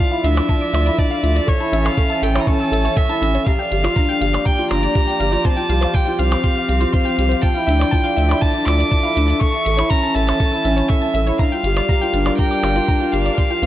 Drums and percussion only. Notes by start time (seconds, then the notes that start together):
0.00 closed hi-hat
0.25 closed hi-hat
0.37 closed hi-hat, percussion blips
0.49 kick, closed hi-hat
0.75 closed hi-hat, percussion blips
0.87 closed hi-hat
0.98 kick, closed hi-hat
1.24 closed hi-hat
1.37 closed hi-hat
1.48 kick, closed hi-hat
1.73 closed hi-hat
1.86 closed hi-hat, percussion blips
1.98 kick, closed hi-hat
2.23 closed hi-hat
2.36 closed hi-hat, percussion blips
2.47 kick, closed hi-hat
2.73 closed hi-hat
2.86 closed hi-hat
2.97 kick, closed hi-hat
3.23 closed hi-hat
3.35 closed hi-hat
3.47 kick, closed hi-hat
3.72 closed hi-hat
3.84 closed hi-hat, percussion blips
3.96 kick, closed hi-hat
4.22 closed hi-hat
4.34 closed hi-hat, percussion blips
4.46 kick, closed hi-hat
4.71 closed hi-hat, percussion blips
4.84 closed hi-hat
4.95 kick, closed hi-hat
5.21 closed hi-hat
5.33 closed hi-hat
5.45 kick, closed hi-hat
5.70 closed hi-hat
5.83 closed hi-hat, percussion blips
5.94 kick, closed hi-hat
6.19 closed hi-hat
6.32 closed hi-hat, percussion blips
6.44 kick, closed hi-hat
6.69 closed hi-hat
6.81 closed hi-hat
6.94 kick, closed hi-hat
7.19 closed hi-hat
7.32 closed hi-hat
7.43 kick, closed hi-hat
7.69 closed hi-hat
7.81 closed hi-hat, percussion blips
7.93 kick, closed hi-hat
8.18 closed hi-hat
8.31 closed hi-hat, percussion blips
8.42 kick, closed hi-hat
8.68 closed hi-hat, percussion blips
8.80 closed hi-hat
8.92 kick, closed hi-hat
9.17 closed hi-hat
9.30 closed hi-hat
9.41 kick, closed hi-hat
9.66 closed hi-hat
9.79 closed hi-hat, percussion blips
9.91 kick, closed hi-hat
10.16 closed hi-hat
10.29 closed hi-hat, percussion blips
10.40 kick, closed hi-hat
10.65 closed hi-hat
10.78 closed hi-hat
10.90 kick, closed hi-hat
11.15 closed hi-hat
11.27 closed hi-hat
11.39 kick, closed hi-hat
11.64 closed hi-hat
11.77 closed hi-hat, percussion blips
11.89 kick, closed hi-hat
12.14 closed hi-hat
12.26 closed hi-hat, percussion blips
12.38 kick, closed hi-hat
12.63 closed hi-hat, percussion blips
12.76 closed hi-hat
12.88 kick, closed hi-hat
13.14 closed hi-hat
13.26 closed hi-hat
13.38 kick, closed hi-hat